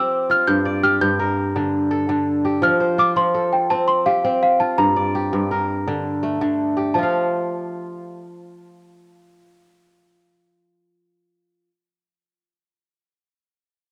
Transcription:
0, 0, Header, 1, 3, 480
1, 0, Start_track
1, 0, Key_signature, -1, "major"
1, 0, Tempo, 360577
1, 628, Time_signature, 12, 3, 24, 8
1, 18525, End_track
2, 0, Start_track
2, 0, Title_t, "Celesta"
2, 0, Program_c, 0, 8
2, 0, Note_on_c, 0, 88, 95
2, 412, Note_on_c, 0, 89, 98
2, 417, Note_off_c, 0, 88, 0
2, 631, Note_on_c, 0, 91, 96
2, 647, Note_off_c, 0, 89, 0
2, 1075, Note_off_c, 0, 91, 0
2, 1111, Note_on_c, 0, 89, 101
2, 1218, Note_off_c, 0, 89, 0
2, 1350, Note_on_c, 0, 91, 100
2, 3209, Note_off_c, 0, 91, 0
2, 3506, Note_on_c, 0, 89, 89
2, 3983, Note_on_c, 0, 86, 94
2, 3996, Note_off_c, 0, 89, 0
2, 4090, Note_off_c, 0, 86, 0
2, 4217, Note_on_c, 0, 84, 91
2, 4694, Note_on_c, 0, 79, 77
2, 4711, Note_off_c, 0, 84, 0
2, 4929, Note_on_c, 0, 81, 91
2, 4942, Note_off_c, 0, 79, 0
2, 5160, Note_on_c, 0, 84, 83
2, 5180, Note_off_c, 0, 81, 0
2, 5403, Note_on_c, 0, 77, 87
2, 5415, Note_off_c, 0, 84, 0
2, 5876, Note_off_c, 0, 77, 0
2, 5892, Note_on_c, 0, 77, 79
2, 6121, Note_on_c, 0, 81, 80
2, 6140, Note_off_c, 0, 77, 0
2, 6362, Note_on_c, 0, 82, 79
2, 6375, Note_off_c, 0, 81, 0
2, 8712, Note_off_c, 0, 82, 0
2, 9243, Note_on_c, 0, 81, 74
2, 15495, Note_off_c, 0, 81, 0
2, 18525, End_track
3, 0, Start_track
3, 0, Title_t, "Kora"
3, 0, Program_c, 1, 46
3, 0, Note_on_c, 1, 53, 76
3, 0, Note_on_c, 1, 60, 74
3, 0, Note_on_c, 1, 65, 73
3, 0, Note_on_c, 1, 67, 70
3, 0, Note_on_c, 1, 69, 60
3, 250, Note_off_c, 1, 65, 0
3, 393, Note_on_c, 1, 65, 61
3, 468, Note_off_c, 1, 69, 0
3, 635, Note_on_c, 1, 43, 91
3, 695, Note_off_c, 1, 53, 0
3, 869, Note_on_c, 1, 74, 62
3, 1101, Note_off_c, 1, 67, 0
3, 1106, Note_on_c, 1, 67, 72
3, 1331, Note_off_c, 1, 43, 0
3, 1347, Note_on_c, 1, 43, 85
3, 1590, Note_on_c, 1, 70, 64
3, 2072, Note_on_c, 1, 50, 90
3, 2314, Note_off_c, 1, 60, 0
3, 2344, Note_off_c, 1, 74, 0
3, 2408, Note_off_c, 1, 65, 0
3, 2539, Note_on_c, 1, 69, 65
3, 2619, Note_off_c, 1, 70, 0
3, 2765, Note_off_c, 1, 50, 0
3, 2781, Note_on_c, 1, 50, 80
3, 2986, Note_off_c, 1, 67, 0
3, 3258, Note_on_c, 1, 67, 65
3, 3487, Note_on_c, 1, 53, 88
3, 3567, Note_off_c, 1, 43, 0
3, 3567, Note_off_c, 1, 50, 0
3, 3729, Note_on_c, 1, 72, 66
3, 3970, Note_on_c, 1, 65, 74
3, 4192, Note_off_c, 1, 53, 0
3, 4208, Note_on_c, 1, 53, 73
3, 4294, Note_off_c, 1, 69, 0
3, 4452, Note_on_c, 1, 69, 62
3, 4933, Note_on_c, 1, 60, 83
3, 5138, Note_off_c, 1, 67, 0
3, 5310, Note_off_c, 1, 72, 0
3, 5403, Note_on_c, 1, 67, 65
3, 5644, Note_off_c, 1, 60, 0
3, 5650, Note_on_c, 1, 60, 76
3, 5984, Note_off_c, 1, 65, 0
3, 6125, Note_on_c, 1, 65, 66
3, 6206, Note_off_c, 1, 69, 0
3, 6364, Note_on_c, 1, 43, 87
3, 6441, Note_off_c, 1, 53, 0
3, 6606, Note_on_c, 1, 74, 66
3, 6848, Note_off_c, 1, 67, 0
3, 6854, Note_on_c, 1, 67, 70
3, 7077, Note_off_c, 1, 43, 0
3, 7093, Note_on_c, 1, 43, 73
3, 7337, Note_on_c, 1, 70, 61
3, 7821, Note_on_c, 1, 50, 81
3, 8046, Note_off_c, 1, 60, 0
3, 8081, Note_off_c, 1, 74, 0
3, 8140, Note_off_c, 1, 65, 0
3, 8291, Note_on_c, 1, 57, 68
3, 8371, Note_off_c, 1, 70, 0
3, 8520, Note_off_c, 1, 50, 0
3, 8536, Note_on_c, 1, 50, 74
3, 8734, Note_off_c, 1, 67, 0
3, 9010, Note_on_c, 1, 67, 65
3, 9250, Note_on_c, 1, 53, 74
3, 9298, Note_on_c, 1, 65, 69
3, 9317, Note_off_c, 1, 43, 0
3, 9317, Note_off_c, 1, 50, 0
3, 9357, Note_on_c, 1, 77, 69
3, 10890, Note_off_c, 1, 67, 0
3, 10950, Note_off_c, 1, 57, 0
3, 15555, Note_off_c, 1, 53, 0
3, 15603, Note_off_c, 1, 65, 0
3, 15662, Note_off_c, 1, 77, 0
3, 18525, End_track
0, 0, End_of_file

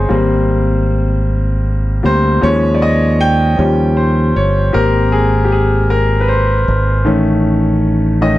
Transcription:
0, 0, Header, 1, 3, 480
1, 0, Start_track
1, 0, Key_signature, -4, "major"
1, 0, Tempo, 773196
1, 68, Time_signature, 6, 3, 24, 8
1, 5205, End_track
2, 0, Start_track
2, 0, Title_t, "Grand piano"
2, 0, Program_c, 0, 0
2, 0, Control_c, 0, 64, 127
2, 0, Note_on_c, 0, 68, 59
2, 0, Note_on_c, 0, 72, 65
2, 0, Note_on_c, 0, 73, 74
2, 54, Note_on_c, 0, 55, 52
2, 56, Note_on_c, 0, 58, 48
2, 61, Note_on_c, 0, 60, 58
2, 77, Control_c, 0, 64, 0
2, 79, Note_off_c, 0, 68, 0
2, 79, Note_off_c, 0, 72, 0
2, 83, Note_off_c, 0, 73, 0
2, 197, Control_c, 0, 64, 127
2, 757, Note_off_c, 0, 55, 0
2, 757, Note_off_c, 0, 58, 0
2, 760, Note_off_c, 0, 60, 0
2, 1260, Note_on_c, 0, 55, 41
2, 1261, Note_on_c, 0, 58, 38
2, 1265, Note_on_c, 0, 60, 46
2, 1276, Note_on_c, 0, 72, 84
2, 1479, Note_off_c, 0, 55, 0
2, 1480, Note_off_c, 0, 58, 0
2, 1482, Note_off_c, 0, 60, 0
2, 1496, Note_on_c, 0, 53, 54
2, 1499, Note_on_c, 0, 56, 48
2, 1500, Note_on_c, 0, 61, 59
2, 1510, Note_on_c, 0, 73, 93
2, 1516, Control_c, 0, 64, 0
2, 1519, Note_off_c, 0, 72, 0
2, 1611, Control_c, 0, 64, 127
2, 1704, Note_on_c, 0, 74, 65
2, 1711, Note_off_c, 0, 73, 0
2, 1748, Note_off_c, 0, 74, 0
2, 1752, Note_on_c, 0, 75, 81
2, 1990, Note_on_c, 0, 79, 99
2, 1997, Note_off_c, 0, 75, 0
2, 2197, Note_off_c, 0, 53, 0
2, 2198, Note_off_c, 0, 56, 0
2, 2199, Note_off_c, 0, 61, 0
2, 2218, Note_on_c, 0, 53, 41
2, 2223, Note_on_c, 0, 55, 46
2, 2227, Note_on_c, 0, 61, 51
2, 2237, Control_c, 0, 64, 0
2, 2349, Control_c, 0, 64, 127
2, 2444, Note_off_c, 0, 79, 0
2, 2462, Note_on_c, 0, 72, 64
2, 2709, Note_on_c, 0, 73, 69
2, 2712, Note_off_c, 0, 72, 0
2, 2918, Note_off_c, 0, 53, 0
2, 2920, Note_off_c, 0, 55, 0
2, 2922, Note_off_c, 0, 61, 0
2, 2935, Note_on_c, 0, 67, 54
2, 2938, Note_on_c, 0, 58, 43
2, 2943, Note_on_c, 0, 60, 55
2, 2944, Note_on_c, 0, 70, 85
2, 2955, Note_off_c, 0, 73, 0
2, 2956, Control_c, 0, 64, 0
2, 3082, Control_c, 0, 64, 127
2, 3179, Note_on_c, 0, 68, 75
2, 3193, Note_off_c, 0, 70, 0
2, 3224, Note_off_c, 0, 68, 0
2, 3370, Note_off_c, 0, 67, 0
2, 3380, Note_on_c, 0, 67, 57
2, 3425, Note_off_c, 0, 67, 0
2, 3427, Note_on_c, 0, 68, 68
2, 3664, Note_on_c, 0, 70, 76
2, 3674, Note_off_c, 0, 68, 0
2, 3848, Note_off_c, 0, 70, 0
2, 3853, Note_on_c, 0, 71, 56
2, 3900, Note_on_c, 0, 72, 64
2, 3902, Note_off_c, 0, 71, 0
2, 4356, Note_off_c, 0, 58, 0
2, 4358, Note_off_c, 0, 72, 0
2, 4359, Note_off_c, 0, 60, 0
2, 4375, Note_on_c, 0, 51, 56
2, 4376, Note_on_c, 0, 57, 46
2, 4382, Note_on_c, 0, 61, 53
2, 4394, Control_c, 0, 64, 0
2, 4489, Control_c, 0, 64, 127
2, 5075, Note_off_c, 0, 51, 0
2, 5075, Note_off_c, 0, 57, 0
2, 5078, Note_off_c, 0, 61, 0
2, 5098, Note_on_c, 0, 51, 46
2, 5102, Note_on_c, 0, 57, 38
2, 5103, Note_on_c, 0, 61, 47
2, 5103, Note_on_c, 0, 75, 73
2, 5205, Note_off_c, 0, 51, 0
2, 5205, Note_off_c, 0, 57, 0
2, 5205, Note_off_c, 0, 61, 0
2, 5205, Note_off_c, 0, 75, 0
2, 5205, End_track
3, 0, Start_track
3, 0, Title_t, "Fingered electric bass"
3, 0, Program_c, 1, 33
3, 65, Note_on_c, 1, 32, 88
3, 1241, Note_off_c, 1, 32, 0
3, 1269, Note_on_c, 1, 38, 76
3, 1490, Note_off_c, 1, 38, 0
3, 1510, Note_on_c, 1, 39, 96
3, 2204, Note_off_c, 1, 39, 0
3, 2228, Note_on_c, 1, 39, 97
3, 2683, Note_off_c, 1, 39, 0
3, 2709, Note_on_c, 1, 31, 78
3, 2929, Note_off_c, 1, 31, 0
3, 2946, Note_on_c, 1, 32, 89
3, 4121, Note_off_c, 1, 32, 0
3, 4148, Note_on_c, 1, 32, 83
3, 4368, Note_off_c, 1, 32, 0
3, 4386, Note_on_c, 1, 33, 92
3, 5205, Note_off_c, 1, 33, 0
3, 5205, End_track
0, 0, End_of_file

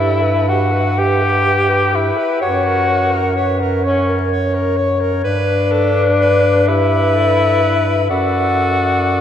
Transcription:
0, 0, Header, 1, 5, 480
1, 0, Start_track
1, 0, Tempo, 985222
1, 715, Tempo, 949367
1, 1194, Time_signature, 6, 3, 24, 8
1, 4629, End_track
2, 0, Start_track
2, 0, Title_t, "Alto saxophone"
2, 0, Program_c, 0, 65
2, 0, Note_on_c, 0, 67, 63
2, 107, Note_on_c, 0, 71, 56
2, 115, Note_off_c, 0, 67, 0
2, 230, Note_off_c, 0, 71, 0
2, 233, Note_on_c, 0, 67, 60
2, 350, Note_on_c, 0, 71, 57
2, 357, Note_off_c, 0, 67, 0
2, 477, Note_on_c, 0, 67, 62
2, 484, Note_off_c, 0, 71, 0
2, 592, Note_on_c, 0, 71, 57
2, 600, Note_off_c, 0, 67, 0
2, 704, Note_off_c, 0, 71, 0
2, 707, Note_on_c, 0, 67, 61
2, 829, Note_on_c, 0, 71, 58
2, 836, Note_off_c, 0, 67, 0
2, 953, Note_on_c, 0, 67, 61
2, 961, Note_off_c, 0, 71, 0
2, 1071, Note_on_c, 0, 71, 60
2, 1079, Note_off_c, 0, 67, 0
2, 1188, Note_off_c, 0, 71, 0
2, 1191, Note_on_c, 0, 73, 67
2, 1311, Note_on_c, 0, 70, 58
2, 1318, Note_off_c, 0, 73, 0
2, 1430, Note_on_c, 0, 73, 67
2, 1437, Note_off_c, 0, 70, 0
2, 1547, Note_on_c, 0, 70, 60
2, 1555, Note_off_c, 0, 73, 0
2, 1666, Note_off_c, 0, 70, 0
2, 1669, Note_on_c, 0, 73, 64
2, 1794, Note_on_c, 0, 70, 60
2, 1802, Note_off_c, 0, 73, 0
2, 1913, Note_on_c, 0, 73, 66
2, 1921, Note_off_c, 0, 70, 0
2, 2037, Note_on_c, 0, 70, 59
2, 2044, Note_off_c, 0, 73, 0
2, 2150, Note_off_c, 0, 70, 0
2, 2153, Note_on_c, 0, 73, 64
2, 2272, Note_on_c, 0, 70, 56
2, 2280, Note_off_c, 0, 73, 0
2, 2383, Note_on_c, 0, 73, 61
2, 2390, Note_off_c, 0, 70, 0
2, 2503, Note_on_c, 0, 70, 61
2, 2511, Note_off_c, 0, 73, 0
2, 2617, Note_off_c, 0, 70, 0
2, 2620, Note_on_c, 0, 71, 76
2, 2865, Note_on_c, 0, 69, 74
2, 2872, Note_off_c, 0, 71, 0
2, 3037, Note_off_c, 0, 69, 0
2, 3109, Note_on_c, 0, 71, 74
2, 3345, Note_off_c, 0, 71, 0
2, 3350, Note_on_c, 0, 71, 72
2, 4053, Note_off_c, 0, 71, 0
2, 4068, Note_on_c, 0, 74, 72
2, 4629, Note_off_c, 0, 74, 0
2, 4629, End_track
3, 0, Start_track
3, 0, Title_t, "Clarinet"
3, 0, Program_c, 1, 71
3, 0, Note_on_c, 1, 69, 76
3, 346, Note_off_c, 1, 69, 0
3, 481, Note_on_c, 1, 71, 81
3, 1192, Note_on_c, 1, 73, 83
3, 1199, Note_off_c, 1, 71, 0
3, 1429, Note_off_c, 1, 73, 0
3, 1432, Note_on_c, 1, 70, 74
3, 1674, Note_on_c, 1, 71, 71
3, 1682, Note_off_c, 1, 70, 0
3, 1920, Note_on_c, 1, 73, 84
3, 1927, Note_off_c, 1, 71, 0
3, 2626, Note_off_c, 1, 73, 0
3, 2629, Note_on_c, 1, 71, 88
3, 3351, Note_on_c, 1, 67, 73
3, 3359, Note_off_c, 1, 71, 0
3, 3588, Note_on_c, 1, 69, 79
3, 3595, Note_off_c, 1, 67, 0
3, 3829, Note_on_c, 1, 71, 77
3, 3837, Note_off_c, 1, 69, 0
3, 4067, Note_off_c, 1, 71, 0
3, 4070, Note_on_c, 1, 69, 83
3, 4629, Note_off_c, 1, 69, 0
3, 4629, End_track
4, 0, Start_track
4, 0, Title_t, "Tenor saxophone"
4, 0, Program_c, 2, 66
4, 0, Note_on_c, 2, 64, 95
4, 237, Note_on_c, 2, 66, 102
4, 244, Note_off_c, 2, 64, 0
4, 481, Note_on_c, 2, 67, 104
4, 489, Note_off_c, 2, 66, 0
4, 959, Note_on_c, 2, 64, 95
4, 967, Note_off_c, 2, 67, 0
4, 1193, Note_off_c, 2, 64, 0
4, 1196, Note_on_c, 2, 66, 106
4, 1767, Note_off_c, 2, 66, 0
4, 1918, Note_on_c, 2, 61, 83
4, 2138, Note_off_c, 2, 61, 0
4, 2624, Note_on_c, 2, 62, 105
4, 3350, Note_on_c, 2, 64, 113
4, 3358, Note_off_c, 2, 62, 0
4, 4065, Note_off_c, 2, 64, 0
4, 4068, Note_on_c, 2, 66, 102
4, 4629, Note_off_c, 2, 66, 0
4, 4629, End_track
5, 0, Start_track
5, 0, Title_t, "Bass clarinet"
5, 0, Program_c, 3, 71
5, 0, Note_on_c, 3, 43, 72
5, 1040, Note_off_c, 3, 43, 0
5, 1195, Note_on_c, 3, 42, 73
5, 2603, Note_off_c, 3, 42, 0
5, 2624, Note_on_c, 3, 43, 74
5, 4047, Note_off_c, 3, 43, 0
5, 4069, Note_on_c, 3, 42, 73
5, 4629, Note_off_c, 3, 42, 0
5, 4629, End_track
0, 0, End_of_file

